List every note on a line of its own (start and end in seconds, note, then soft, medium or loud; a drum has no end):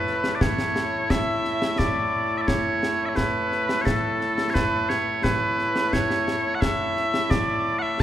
0.00 8.03 A2 medium
0.00 8.03 A3 medium
0.00 8.03 E4 medium
0.00 0.35 B4 medium
0.07 snare soft
0.24 snare medium
0.35 0.41 D5 medium
0.41 1.11 C#5 medium
0.41 concert bass drum medium
0.41 snare medium
0.58 snare medium
0.76 snare medium
1.10 1.79 E5 medium
1.10 concert bass drum medium
1.10 snare medium
1.45 snare soft
1.62 snare medium
1.79 2.38 D5 loud
1.79 concert bass drum medium
1.79 snare medium
2.38 2.47 D5 medium
2.38 2.41 E5 medium
2.47 3.06 C#5 medium
2.47 concert bass drum medium
2.47 snare medium
2.83 snare medium
3.06 3.16 C#5 medium
3.06 3.09 E5 medium
3.16 3.81 B4 medium
3.16 concert bass drum soft
3.16 snare medium
3.52 snare soft
3.69 snare medium
3.81 4.50 A4 medium
3.81 3.85 C#5 medium
3.87 concert bass drum medium
3.87 snare medium
4.21 snare soft
4.38 snare medium
4.50 4.54 C#5 loud
4.54 4.89 B4 loud
4.54 concert bass drum medium
4.54 snare medium
4.89 5.23 C#5 medium
4.89 snare medium
5.23 5.93 B4 loud
5.23 concert bass drum medium
5.23 snare medium
5.59 snare soft
5.76 snare medium
5.93 6.55 C#5 medium
5.93 concert bass drum soft
5.93 snare medium
6.11 snare medium
6.28 snare medium
6.55 6.61 F#5 medium
6.61 7.30 E5 loud
6.61 concert bass drum medium
6.61 snare loud
6.97 snare soft
7.14 snare medium
7.30 7.79 D5 loud
7.30 concert bass drum medium
7.30 snare loud
7.79 8.00 E5 medium
7.79 7.82 F#5 medium